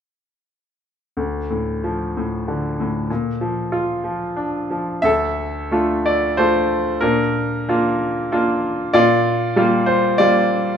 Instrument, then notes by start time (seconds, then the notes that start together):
grand piano
1.17 D2
1.50 A2
1.84 F3
2.17 A2
2.48 D3
2.80 A2
3.10 A#2
3.41 F3
3.72 F4
4.04 F3
4.36 D4
4.70 F3
5.02 D2 A4 E5
5.71 A3 D4 F4
6.06 D5
6.37 A3 D4 F4 C5
7.01 A#2 D4 A#4
7.69 A#3 D4 F4
8.32 A#3 D4 F4
8.93 A#2 F4 D5
9.56 G3 A#3 F4
9.86 C5
10.18 G3 A#3 F4 D5